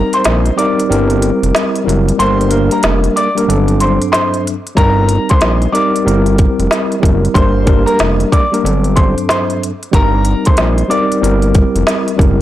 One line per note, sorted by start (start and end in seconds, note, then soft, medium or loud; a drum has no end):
0.00 0.51 G3 medium
0.00 0.51 C4 medium
0.00 0.52 D#4 medium
0.00 0.11 A#4 medium
0.00 0.52 A#4 loud
0.00 0.11 A#5 loud
0.13 0.56 C5 medium
0.13 0.55 C6 medium
0.13 closed hi-hat medium
0.24 0.51 A#1 medium
0.24 snare loud
0.24 closed hi-hat medium
0.46 closed hi-hat soft
0.56 0.88 G3 loud
0.56 0.88 C4 medium
0.56 0.90 D#4 medium
0.56 0.90 A#4 loud
0.56 1.51 D5 medium
0.56 1.50 D6 medium
0.56 closed hi-hat medium
0.80 closed hi-hat medium
0.89 1.32 G1 loud
0.89 1.80 G3 medium
0.89 1.81 C4 medium
0.89 1.81 E4 medium
0.89 1.81 A#4 loud
0.89 closed hi-hat medium
1.10 closed hi-hat soft
1.22 closed hi-hat medium
1.43 1.52 F1 medium
1.43 closed hi-hat medium
1.55 snare loud
1.55 closed hi-hat loud
1.76 closed hi-hat soft
1.84 2.12 F#1 loud
1.84 2.16 G3 medium
1.84 2.16 C4 medium
1.84 2.16 E4 medium
1.84 2.17 A#4 medium
1.89 closed hi-hat medium
2.09 closed hi-hat soft
2.18 2.70 G1 loud
2.18 2.48 G3 medium
2.18 2.49 A#3 medium
2.18 2.49 D4 medium
2.18 2.50 A#4 medium
2.18 2.69 C5 medium
2.18 2.68 C6 loud
2.18 closed hi-hat loud
2.41 closed hi-hat soft
2.49 3.27 G3 medium
2.49 3.27 A#3 medium
2.49 3.28 D4 medium
2.49 3.28 A#4 loud
2.49 closed hi-hat medium
2.71 2.83 A#4 medium
2.71 2.83 A#5 medium
2.71 closed hi-hat medium
2.83 3.09 F1 medium
2.83 snare loud
2.83 closed hi-hat medium
3.04 closed hi-hat soft
3.16 3.35 D5 medium
3.16 3.34 D6 medium
3.16 closed hi-hat medium
3.35 3.48 G3 medium
3.35 3.48 A#3 medium
3.35 3.47 D4 medium
3.35 3.49 A#4 loud
3.35 closed hi-hat medium
3.47 3.99 G1 loud
3.47 4.53 G2 loud
3.47 4.53 F#3 medium
3.47 4.54 C4 medium
3.47 4.54 D4 medium
3.47 4.54 A4 loud
3.47 closed hi-hat loud
3.68 closed hi-hat soft
3.80 3.99 C5 medium
3.80 3.99 C6 medium
3.80 closed hi-hat medium
4.02 closed hi-hat medium
4.12 4.42 C5 medium
4.12 4.41 C6 medium
4.12 snare loud
4.12 closed hi-hat loud
4.34 closed hi-hat soft
4.47 closed hi-hat medium
4.67 closed hi-hat soft
4.75 5.19 G1 loud
4.75 5.67 G3 medium
4.75 5.68 C4 medium
4.75 5.68 D#4 medium
4.75 5.68 A#4 medium
4.75 5.27 A#4 medium
4.75 5.26 A#5 loud
4.75 kick loud
4.75 closed hi-hat loud
5.09 closed hi-hat medium
5.29 5.72 C5 medium
5.29 5.71 C6 medium
5.29 kick medium
5.29 closed hi-hat medium
5.41 5.67 A#1 loud
5.41 snare loud
5.41 closed hi-hat medium
5.62 closed hi-hat soft
5.72 6.04 G3 medium
5.72 6.04 C4 medium
5.72 6.06 D#4 medium
5.72 6.06 A#4 loud
5.72 6.66 D5 medium
5.72 6.66 D6 medium
5.72 closed hi-hat medium
5.96 closed hi-hat medium
6.05 6.48 G1 loud
6.05 6.96 G3 medium
6.05 6.97 C4 medium
6.05 6.97 E4 medium
6.05 6.97 A#4 loud
6.05 closed hi-hat loud
6.26 closed hi-hat soft
6.38 kick medium
6.38 closed hi-hat medium
6.59 6.68 F1 medium
6.59 closed hi-hat medium
6.71 snare loud
6.71 closed hi-hat loud
6.92 closed hi-hat soft
7.00 7.28 F#1 loud
7.00 7.32 G3 medium
7.00 7.32 C4 medium
7.00 7.32 E4 medium
7.00 7.33 A#4 medium
7.00 kick medium
7.05 closed hi-hat medium
7.25 closed hi-hat soft
7.34 7.86 G1 loud
7.34 7.64 G3 medium
7.34 7.64 A#3 medium
7.34 7.65 D4 medium
7.34 7.66 A#4 loud
7.34 7.85 C5 medium
7.34 7.84 C6 loud
7.34 kick loud
7.34 closed hi-hat loud
7.65 8.43 G3 loud
7.65 8.43 A#3 medium
7.65 8.43 D4 medium
7.65 8.44 A#4 loud
7.65 kick loud
7.65 closed hi-hat medium
7.86 7.98 A#4 medium
7.86 7.98 A#5 medium
7.86 closed hi-hat medium
7.99 8.25 F1 medium
7.99 snare loud
7.99 closed hi-hat medium
8.20 closed hi-hat soft
8.32 8.51 D5 medium
8.32 8.50 D6 medium
8.32 kick medium
8.32 closed hi-hat medium
8.52 8.64 G3 medium
8.52 8.64 A#3 medium
8.52 8.63 D4 medium
8.52 8.65 A#4 loud
8.52 closed hi-hat medium
8.63 9.15 G1 loud
8.63 9.69 G2 medium
8.63 9.70 F#3 medium
8.63 9.70 C4 medium
8.63 9.70 D4 medium
8.63 9.70 A4 loud
8.63 closed hi-hat loud
8.84 closed hi-hat soft
8.96 9.15 C5 medium
8.96 9.14 C6 medium
8.96 kick medium
8.96 closed hi-hat medium
9.18 closed hi-hat medium
9.29 9.58 C5 medium
9.29 9.58 C6 medium
9.29 snare loud
9.29 closed hi-hat loud
9.50 closed hi-hat soft
9.63 closed hi-hat medium
9.83 closed hi-hat soft
9.92 10.35 G1 loud
9.92 10.83 G3 medium
9.92 10.84 C4 medium
9.92 10.84 D#4 medium
9.92 10.84 A#4 loud
9.92 10.44 A#4 medium
9.92 10.43 A#5 loud
9.92 kick loud
9.92 closed hi-hat loud
10.25 closed hi-hat medium
10.45 10.88 C5 medium
10.45 10.88 C6 medium
10.45 kick medium
10.45 closed hi-hat medium
10.57 10.83 A#1 medium
10.57 snare loud
10.57 closed hi-hat medium
10.78 closed hi-hat soft
10.88 11.20 G3 loud
10.88 11.20 C4 medium
10.88 11.22 D#4 medium
10.88 11.22 A#4 loud
10.88 11.83 D5 medium
10.88 11.83 D6 medium
10.88 closed hi-hat medium
11.12 closed hi-hat medium
11.21 11.64 G1 loud
11.21 12.13 G3 medium
11.21 12.13 C4 medium
11.21 12.13 E4 medium
11.21 12.14 A#4 loud
11.21 closed hi-hat loud
11.42 closed hi-hat soft
11.55 kick medium
11.55 closed hi-hat medium
11.75 11.84 F1 medium
11.75 closed hi-hat medium
11.87 snare loud
11.87 closed hi-hat loud
12.08 closed hi-hat soft
12.16 12.42 F#1 loud
12.16 12.42 G3 medium
12.16 12.42 C4 medium
12.16 12.42 E4 medium
12.16 12.42 A#4 medium
12.16 kick loud
12.21 closed hi-hat medium